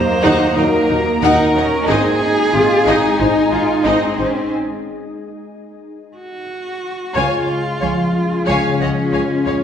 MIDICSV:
0, 0, Header, 1, 10, 480
1, 0, Start_track
1, 0, Tempo, 659341
1, 1371, Time_signature, 4, 2, 24, 8
1, 7015, End_track
2, 0, Start_track
2, 0, Title_t, "Violin section"
2, 0, Program_c, 0, 48
2, 0, Note_on_c, 0, 82, 77
2, 1341, Note_off_c, 0, 82, 0
2, 1375, Note_on_c, 0, 80, 72
2, 3293, Note_off_c, 0, 80, 0
2, 5210, Note_on_c, 0, 80, 62
2, 5434, Note_off_c, 0, 80, 0
2, 5694, Note_on_c, 0, 80, 49
2, 5752, Note_off_c, 0, 80, 0
2, 6170, Note_on_c, 0, 80, 62
2, 6394, Note_off_c, 0, 80, 0
2, 6412, Note_on_c, 0, 78, 53
2, 6470, Note_off_c, 0, 78, 0
2, 6651, Note_on_c, 0, 80, 54
2, 6709, Note_off_c, 0, 80, 0
2, 6894, Note_on_c, 0, 77, 49
2, 6952, Note_off_c, 0, 77, 0
2, 7015, End_track
3, 0, Start_track
3, 0, Title_t, "Violin section"
3, 0, Program_c, 1, 48
3, 172, Note_on_c, 1, 78, 79
3, 395, Note_off_c, 1, 78, 0
3, 412, Note_on_c, 1, 75, 62
3, 470, Note_off_c, 1, 75, 0
3, 659, Note_on_c, 1, 70, 59
3, 717, Note_off_c, 1, 70, 0
3, 896, Note_on_c, 1, 78, 78
3, 1117, Note_off_c, 1, 78, 0
3, 1141, Note_on_c, 1, 75, 66
3, 1200, Note_off_c, 1, 75, 0
3, 1376, Note_on_c, 1, 75, 72
3, 1597, Note_off_c, 1, 75, 0
3, 1856, Note_on_c, 1, 68, 54
3, 1914, Note_off_c, 1, 68, 0
3, 2093, Note_on_c, 1, 75, 74
3, 2315, Note_off_c, 1, 75, 0
3, 2340, Note_on_c, 1, 72, 51
3, 2398, Note_off_c, 1, 72, 0
3, 2575, Note_on_c, 1, 68, 51
3, 2633, Note_off_c, 1, 68, 0
3, 2808, Note_on_c, 1, 75, 64
3, 3033, Note_off_c, 1, 75, 0
3, 3049, Note_on_c, 1, 72, 54
3, 3107, Note_off_c, 1, 72, 0
3, 5216, Note_on_c, 1, 77, 57
3, 5437, Note_off_c, 1, 77, 0
3, 5694, Note_on_c, 1, 77, 44
3, 5752, Note_off_c, 1, 77, 0
3, 6170, Note_on_c, 1, 77, 68
3, 6394, Note_off_c, 1, 77, 0
3, 6409, Note_on_c, 1, 75, 56
3, 6468, Note_off_c, 1, 75, 0
3, 6652, Note_on_c, 1, 77, 52
3, 6711, Note_off_c, 1, 77, 0
3, 6889, Note_on_c, 1, 73, 51
3, 6947, Note_off_c, 1, 73, 0
3, 7015, End_track
4, 0, Start_track
4, 0, Title_t, "Cello"
4, 0, Program_c, 2, 42
4, 0, Note_on_c, 2, 72, 104
4, 407, Note_on_c, 2, 70, 92
4, 417, Note_off_c, 2, 72, 0
4, 884, Note_off_c, 2, 70, 0
4, 889, Note_on_c, 2, 70, 101
4, 1370, Note_on_c, 2, 68, 109
4, 1381, Note_off_c, 2, 70, 0
4, 2329, Note_on_c, 2, 63, 92
4, 2340, Note_off_c, 2, 68, 0
4, 2557, Note_off_c, 2, 63, 0
4, 2562, Note_on_c, 2, 65, 72
4, 2803, Note_on_c, 2, 63, 76
4, 2813, Note_off_c, 2, 65, 0
4, 3043, Note_off_c, 2, 63, 0
4, 3047, Note_on_c, 2, 61, 71
4, 3284, Note_off_c, 2, 61, 0
4, 4491, Note_on_c, 2, 66, 72
4, 5214, Note_on_c, 2, 65, 78
4, 5225, Note_off_c, 2, 66, 0
4, 6173, Note_off_c, 2, 65, 0
4, 6176, Note_on_c, 2, 61, 88
4, 7015, Note_off_c, 2, 61, 0
4, 7015, End_track
5, 0, Start_track
5, 0, Title_t, "Ambient pad"
5, 0, Program_c, 3, 92
5, 0, Note_on_c, 3, 58, 73
5, 0, Note_on_c, 3, 63, 71
5, 0, Note_on_c, 3, 66, 73
5, 0, Note_on_c, 3, 75, 67
5, 1344, Note_off_c, 3, 58, 0
5, 1345, Note_off_c, 3, 66, 0
5, 1360, Note_off_c, 3, 75, 0
5, 1362, Note_off_c, 3, 63, 0
5, 1369, Note_on_c, 3, 75, 74
5, 1370, Note_on_c, 3, 56, 78
5, 1371, Note_on_c, 3, 63, 76
5, 1371, Note_on_c, 3, 68, 70
5, 3261, Note_off_c, 3, 75, 0
5, 3262, Note_off_c, 3, 63, 0
5, 3291, Note_off_c, 3, 56, 0
5, 3291, Note_off_c, 3, 68, 0
5, 5209, Note_on_c, 3, 68, 70
5, 5210, Note_on_c, 3, 49, 72
5, 5210, Note_on_c, 3, 61, 75
5, 7015, Note_off_c, 3, 49, 0
5, 7015, Note_off_c, 3, 61, 0
5, 7015, Note_off_c, 3, 68, 0
5, 7015, End_track
6, 0, Start_track
6, 0, Title_t, "Viola section"
6, 0, Program_c, 4, 48
6, 167, Note_on_c, 4, 63, 85
6, 392, Note_off_c, 4, 63, 0
6, 410, Note_on_c, 4, 63, 58
6, 469, Note_off_c, 4, 63, 0
6, 650, Note_on_c, 4, 63, 62
6, 708, Note_off_c, 4, 63, 0
6, 891, Note_on_c, 4, 63, 74
6, 1114, Note_off_c, 4, 63, 0
6, 1133, Note_on_c, 4, 63, 66
6, 1191, Note_off_c, 4, 63, 0
6, 1371, Note_on_c, 4, 63, 76
6, 1594, Note_off_c, 4, 63, 0
6, 1852, Note_on_c, 4, 63, 53
6, 1910, Note_off_c, 4, 63, 0
6, 2092, Note_on_c, 4, 63, 73
6, 2315, Note_off_c, 4, 63, 0
6, 2331, Note_on_c, 4, 63, 45
6, 2389, Note_off_c, 4, 63, 0
6, 2571, Note_on_c, 4, 63, 56
6, 2629, Note_off_c, 4, 63, 0
6, 2806, Note_on_c, 4, 63, 74
6, 3031, Note_off_c, 4, 63, 0
6, 3053, Note_on_c, 4, 63, 45
6, 3111, Note_off_c, 4, 63, 0
6, 5206, Note_on_c, 4, 73, 63
6, 5431, Note_off_c, 4, 73, 0
6, 5689, Note_on_c, 4, 73, 46
6, 5747, Note_off_c, 4, 73, 0
6, 6165, Note_on_c, 4, 73, 63
6, 6391, Note_off_c, 4, 73, 0
6, 6414, Note_on_c, 4, 73, 47
6, 6472, Note_off_c, 4, 73, 0
6, 6649, Note_on_c, 4, 73, 57
6, 6707, Note_off_c, 4, 73, 0
6, 6889, Note_on_c, 4, 73, 52
6, 6947, Note_off_c, 4, 73, 0
6, 7015, End_track
7, 0, Start_track
7, 0, Title_t, "French horn section"
7, 0, Program_c, 5, 60
7, 404, Note_on_c, 5, 54, 80
7, 406, Note_on_c, 5, 63, 83
7, 574, Note_off_c, 5, 54, 0
7, 575, Note_off_c, 5, 63, 0
7, 1370, Note_on_c, 5, 63, 70
7, 1371, Note_on_c, 5, 56, 72
7, 1538, Note_off_c, 5, 56, 0
7, 1538, Note_off_c, 5, 63, 0
7, 2325, Note_on_c, 5, 56, 69
7, 2328, Note_on_c, 5, 63, 72
7, 2494, Note_off_c, 5, 56, 0
7, 2496, Note_off_c, 5, 63, 0
7, 5210, Note_on_c, 5, 56, 58
7, 5211, Note_on_c, 5, 65, 56
7, 7015, Note_off_c, 5, 56, 0
7, 7015, Note_off_c, 5, 65, 0
7, 7015, End_track
8, 0, Start_track
8, 0, Title_t, "Cello section"
8, 0, Program_c, 6, 48
8, 0, Note_on_c, 6, 58, 74
8, 889, Note_on_c, 6, 63, 76
8, 891, Note_off_c, 6, 58, 0
8, 1125, Note_off_c, 6, 63, 0
8, 1128, Note_on_c, 6, 61, 68
8, 1364, Note_on_c, 6, 60, 76
8, 1365, Note_off_c, 6, 61, 0
8, 1608, Note_off_c, 6, 60, 0
8, 1610, Note_on_c, 6, 63, 67
8, 1848, Note_on_c, 6, 65, 69
8, 1850, Note_off_c, 6, 63, 0
8, 2089, Note_off_c, 6, 65, 0
8, 2089, Note_on_c, 6, 63, 71
8, 2808, Note_on_c, 6, 60, 66
8, 2810, Note_off_c, 6, 63, 0
8, 3280, Note_off_c, 6, 60, 0
8, 5213, Note_on_c, 6, 37, 69
8, 5271, Note_off_c, 6, 37, 0
8, 5692, Note_on_c, 6, 37, 46
8, 5750, Note_off_c, 6, 37, 0
8, 6171, Note_on_c, 6, 37, 64
8, 6229, Note_off_c, 6, 37, 0
8, 6410, Note_on_c, 6, 37, 46
8, 6468, Note_off_c, 6, 37, 0
8, 6654, Note_on_c, 6, 37, 46
8, 6712, Note_off_c, 6, 37, 0
8, 6891, Note_on_c, 6, 37, 46
8, 6950, Note_off_c, 6, 37, 0
8, 7015, End_track
9, 0, Start_track
9, 0, Title_t, "Synth pluck"
9, 0, Program_c, 7, 84
9, 173, Note_on_c, 7, 51, 90
9, 316, Note_off_c, 7, 51, 0
9, 411, Note_on_c, 7, 54, 62
9, 555, Note_off_c, 7, 54, 0
9, 653, Note_on_c, 7, 58, 66
9, 797, Note_off_c, 7, 58, 0
9, 891, Note_on_c, 7, 51, 93
9, 1035, Note_off_c, 7, 51, 0
9, 1132, Note_on_c, 7, 58, 64
9, 1275, Note_off_c, 7, 58, 0
9, 1371, Note_on_c, 7, 56, 86
9, 1515, Note_off_c, 7, 56, 0
9, 1849, Note_on_c, 7, 60, 65
9, 1994, Note_off_c, 7, 60, 0
9, 2090, Note_on_c, 7, 56, 88
9, 2234, Note_off_c, 7, 56, 0
9, 2329, Note_on_c, 7, 60, 61
9, 2474, Note_off_c, 7, 60, 0
9, 2568, Note_on_c, 7, 63, 68
9, 2713, Note_off_c, 7, 63, 0
9, 2807, Note_on_c, 7, 56, 94
9, 2952, Note_off_c, 7, 56, 0
9, 3047, Note_on_c, 7, 63, 61
9, 3192, Note_off_c, 7, 63, 0
9, 5215, Note_on_c, 7, 49, 80
9, 5358, Note_off_c, 7, 49, 0
9, 5697, Note_on_c, 7, 53, 62
9, 5839, Note_off_c, 7, 53, 0
9, 6174, Note_on_c, 7, 49, 85
9, 6317, Note_off_c, 7, 49, 0
9, 6413, Note_on_c, 7, 53, 57
9, 6557, Note_off_c, 7, 53, 0
9, 6652, Note_on_c, 7, 53, 60
9, 6796, Note_off_c, 7, 53, 0
9, 6891, Note_on_c, 7, 53, 59
9, 7015, Note_off_c, 7, 53, 0
9, 7015, End_track
10, 0, Start_track
10, 0, Title_t, "Double bass section"
10, 0, Program_c, 8, 48
10, 167, Note_on_c, 8, 39, 76
10, 226, Note_off_c, 8, 39, 0
10, 410, Note_on_c, 8, 39, 62
10, 469, Note_off_c, 8, 39, 0
10, 653, Note_on_c, 8, 39, 60
10, 711, Note_off_c, 8, 39, 0
10, 888, Note_on_c, 8, 39, 80
10, 947, Note_off_c, 8, 39, 0
10, 1128, Note_on_c, 8, 39, 53
10, 1186, Note_off_c, 8, 39, 0
10, 1368, Note_on_c, 8, 32, 73
10, 1427, Note_off_c, 8, 32, 0
10, 1851, Note_on_c, 8, 32, 58
10, 1909, Note_off_c, 8, 32, 0
10, 2088, Note_on_c, 8, 32, 68
10, 2146, Note_off_c, 8, 32, 0
10, 2328, Note_on_c, 8, 32, 51
10, 2386, Note_off_c, 8, 32, 0
10, 2567, Note_on_c, 8, 32, 45
10, 2625, Note_off_c, 8, 32, 0
10, 2808, Note_on_c, 8, 32, 62
10, 2866, Note_off_c, 8, 32, 0
10, 3050, Note_on_c, 8, 32, 41
10, 3108, Note_off_c, 8, 32, 0
10, 5213, Note_on_c, 8, 37, 61
10, 5272, Note_off_c, 8, 37, 0
10, 5693, Note_on_c, 8, 37, 49
10, 5752, Note_off_c, 8, 37, 0
10, 6170, Note_on_c, 8, 37, 64
10, 6228, Note_off_c, 8, 37, 0
10, 6411, Note_on_c, 8, 37, 43
10, 6469, Note_off_c, 8, 37, 0
10, 6652, Note_on_c, 8, 37, 49
10, 6711, Note_off_c, 8, 37, 0
10, 6891, Note_on_c, 8, 37, 44
10, 6950, Note_off_c, 8, 37, 0
10, 7015, End_track
0, 0, End_of_file